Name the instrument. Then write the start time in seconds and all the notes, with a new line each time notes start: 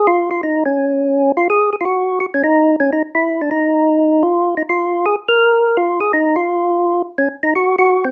tonewheel organ
0.07 F4
0.31 F4
0.43 D#4
0.66 C#4
1.37 F4
1.50 G#4
1.73 G#4
1.81 F4
1.85 F#4
2.20 F#4
2.34 C#4
2.44 D#4
2.80 C#4
2.93 D#4
3.15 E4
3.42 D4
3.51 D#4
4.23 F4
4.57 D#4
4.69 F4
5.06 G#4
5.29 A#4
5.77 F4
6.00 G#4
6.13 D#4
6.36 F4
7.18 C#4
7.43 D#4
7.55 F#4
7.79 F#4
8.05 C4